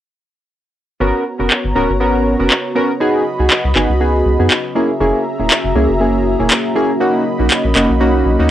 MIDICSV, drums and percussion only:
0, 0, Header, 1, 2, 480
1, 0, Start_track
1, 0, Key_signature, 5, "minor"
1, 0, Tempo, 500000
1, 965, Time_signature, 4, 2, 24, 8
1, 8166, End_track
2, 0, Start_track
2, 0, Title_t, "Drums"
2, 1444, Note_on_c, 9, 39, 116
2, 1540, Note_off_c, 9, 39, 0
2, 2405, Note_on_c, 9, 39, 105
2, 2501, Note_off_c, 9, 39, 0
2, 3364, Note_on_c, 9, 39, 113
2, 3460, Note_off_c, 9, 39, 0
2, 3605, Note_on_c, 9, 39, 66
2, 3701, Note_off_c, 9, 39, 0
2, 4325, Note_on_c, 9, 39, 114
2, 4421, Note_off_c, 9, 39, 0
2, 5285, Note_on_c, 9, 39, 119
2, 5381, Note_off_c, 9, 39, 0
2, 6244, Note_on_c, 9, 39, 111
2, 6340, Note_off_c, 9, 39, 0
2, 7205, Note_on_c, 9, 39, 108
2, 7301, Note_off_c, 9, 39, 0
2, 7444, Note_on_c, 9, 39, 58
2, 7540, Note_off_c, 9, 39, 0
2, 8166, End_track
0, 0, End_of_file